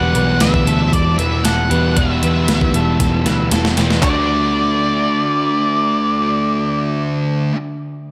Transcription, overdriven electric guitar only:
0.00 1.68 E2 medium
0.00 1.69 B2 medium
0.00 1.72 E3 loud
0.00 1.69 G3 loud
0.00 1.70 B3 medium
0.00 1.69 G4 loud
1.70 1.96 B2 medium
1.70 1.98 E3 medium
1.70 1.96 G3 medium
1.70 1.99 B3 medium
1.70 1.95 G4 medium
1.74 1.95 E2 medium
1.96 3.76 E2 medium
1.96 3.77 B2 medium
1.96 3.77 E3 medium
1.96 3.78 G3 medium
1.96 3.77 B3 medium
1.96 3.76 G4 loud
3.77 4.04 E2 medium
3.77 4.03 B2 medium
3.77 4.02 E3 medium
3.77 4.03 G3 medium
3.77 4.02 B3 medium
3.77 4.02 G4 medium
4.02 7.52 D3 loud
4.02 7.54 A3 medium
4.02 7.55 D4 loud
4.06 7.56 F#4 medium

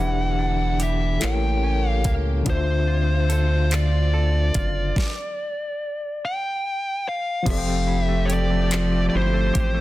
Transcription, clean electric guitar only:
0.00 1.30 E3 medium
0.00 0.38 E4 medium
0.00 0.79 G4 medium
0.39 1.30 D4 medium
0.80 1.30 G4 medium
1.21 2.55 A2 medium
1.63 2.55 C#4 medium
2.05 2.55 A#3 medium
2.47 4.97 D3 medium
2.88 3.71 F4 medium
3.29 4.12 A4 medium
3.72 4.54 F4 medium
4.14 5.05 A4 medium
4.55 5.05 F4 medium
7.46 8.71 F3 medium
7.67 8.07 A3 medium
7.87 9.12 E4 medium
8.09 8.49 A3 medium
8.29 9.53 G4 medium
8.50 8.90 A3 medium
8.71 9.81 F3 medium
8.91 9.33 A3 medium
9.13 9.81 E4 medium
9.34 9.73 A3 medium
9.54 9.81 G4 medium
9.74 9.81 A3 medium

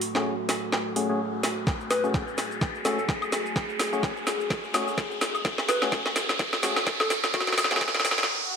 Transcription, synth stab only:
0.15 0.34 A3 medium
0.15 0.34 C#4 medium
0.15 0.34 F#4 medium
0.15 0.34 G#4 medium
0.96 1.07 A3 medium
0.96 1.07 C#4 medium
0.96 1.07 F#4 medium
0.96 1.07 G#4 medium
1.09 1.20 A3 medium
1.09 1.20 C#4 medium
1.09 1.20 F#4 medium
1.09 1.20 G#4 medium
2.04 2.23 A3 medium
2.04 2.23 C#4 medium
2.04 2.23 F#4 medium
2.04 2.23 G#4 medium
2.85 2.99 A3 medium
2.85 2.99 C#4 medium
2.85 2.99 F#4 medium
2.85 2.99 G#4 medium
3.93 4.12 A3 medium
3.93 4.12 C#4 medium
3.93 4.12 F#4 medium
3.93 4.12 G#4 medium
4.74 4.88 A3 medium
4.74 4.88 C#4 medium
4.74 4.88 F#4 medium
4.74 4.88 G#4 medium
5.82 6.01 A3 medium
5.82 6.01 C#4 medium
5.82 6.01 F#4 medium
5.82 6.01 G#4 medium
6.63 6.77 A3 medium
6.63 6.77 C#4 medium
6.63 6.77 F#4 medium
6.63 6.77 G#4 medium
7.71 7.90 A3 medium
7.71 7.90 C#4 medium
7.71 7.90 F#4 medium
7.71 7.90 G#4 medium

